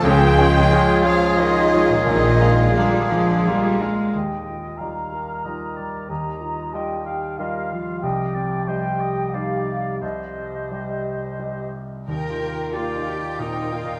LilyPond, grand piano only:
\new Staff \with { instrumentName = "Grand piano" } { \time 3/4 \key bes \dorian \tempo 4 = 90 des,8 <aes f' des''>8 <aes f' des''>8 <aes f' des''>8 <aes f' des''>8 <aes f' des''>8 | bes,,8 <aes f' f''>8 <bes f' f''>8 <aes f' f''>8 <bes f' f''>8 <aes f' f''>8 | \key ees \major ees,4 <g f' ees''>4 <g ees' f'>4 | ees,4 <g f' ees''>4 <g f' ees''>4 |
c,4 <g g' ees''>4 <g ees' g'>4 | c,4 <g g' ees''>4 <g g' ees''>4 | \tuplet 3/2 { ees,8 f'8 g'8 f'8 ees'8 f'8 bes,8 f'8 bes,8 } | }